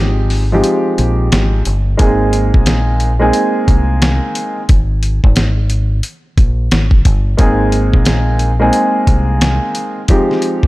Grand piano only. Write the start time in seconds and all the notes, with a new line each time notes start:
Already playing: F3 G#3 C4 D#4 G4
0.52 F3 G#3 C4 D#4 G4
1.97 G#3 A#3 C4 D#4 G#4
3.19 G#3 A#3 C4 D#4 G#4
7.37 G#3 A#3 C4 D#4 G#4
8.59 G#3 A#3 C4 D#4 G#4
10.09 F3 G#3 C4 D#4 G4